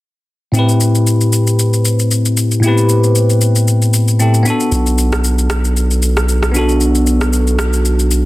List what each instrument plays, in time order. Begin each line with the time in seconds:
0.52 tine electric piano A2 C4 E4, shaker
0.57 tine electric piano G4 B4
0.69 shaker
0.81 shaker
0.95 shaker
1.07 shaker
1.21 shaker
1.33 shaker
1.47 shaker
1.59 shaker
1.73 shaker
1.85 shaker
1.99 shaker
2.11 shaker
2.26 shaker
2.37 shaker
2.51 shaker
2.60 tine electric piano A2 B3 E4, shaker
2.66 tine electric piano C4 G4 B4
2.78 shaker
2.89 shaker
3.04 shaker
3.15 shaker
3.30 shaker
3.41 shaker
3.56 shaker
3.68 shaker
3.82 shaker
3.94 shaker
4.08 shaker
4.19 tine electric piano A2 C4 E4 G4 A4, shaker
4.34 shaker
4.43 tine electric piano B3 D4, shaker
4.48 tine electric piano F#4 A4
4.60 shaker
4.72 sub bass B1, shaker
4.86 shaker
4.98 shaker
5.13 cross-stick, shaker
5.24 shaker
5.39 shaker
5.50 cross-stick, shaker
5.65 shaker
5.77 shaker
5.91 shaker
6.02 shaker
6.17 cross-stick, shaker
6.29 shaker
6.43 cross-stick, shaker
6.51 tine electric piano B3 D4, shaker
6.56 tine electric piano F#4 A4
6.69 shaker
6.81 shaker
6.95 shaker
7.07 shaker
7.21 cross-stick, shaker
7.33 shaker
7.47 shaker
7.59 cross-stick, shaker
7.73 shaker
7.85 shaker
7.99 shaker
8.11 shaker